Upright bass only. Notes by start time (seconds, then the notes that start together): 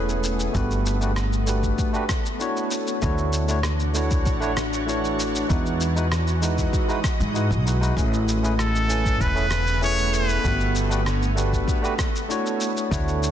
Already playing: E1
0.55 G1
3.02 D2
4.26 A1
5.50 E2
7.20 G#2
7.51 B1
7.97 A1
9.20 E1
10.44 G1
12.91 D2